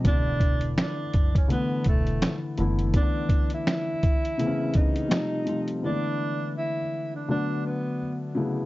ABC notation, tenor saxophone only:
X:1
M:4/4
L:1/16
Q:"Swing 16ths" 1/4=83
K:Edor
V:1 name="Tenor saxophone"
D4 D3 C B,2 A,3 z3 | D3 E6- E ^D6 | D4 E3 D D2 B,3 z3 |]